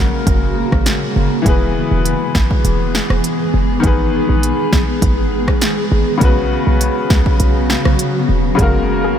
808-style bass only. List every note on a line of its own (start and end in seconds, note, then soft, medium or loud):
0.27 0.63 F#1 loud
0.72 0.96 G#1 loud
1.16 1.29 F#1 medium
1.46 1.82 E1 loud
1.91 2.15 E1 medium
2.35 2.48 G#1 loud
2.65 3.01 E1 loud
3.10 3.21 E1 medium
3.54 3.78 F#1 loud
3.84 4.20 G#1 loud
4.29 4.53 A#1 medium
4.73 4.85 A#1 medium
5.02 5.49 G#1 loud
5.48 5.71 A#1 loud
5.92 6.04 G#1 loud
6.21 6.57 B1 loud
6.67 6.90 B1 medium
7.10 7.23 C#2 loud
7.40 7.76 B1 loud
7.85 7.97 B1 medium
8.29 8.53 E1 medium
8.59 9.06 F#1 loud
9.04 9.19 G#1 loud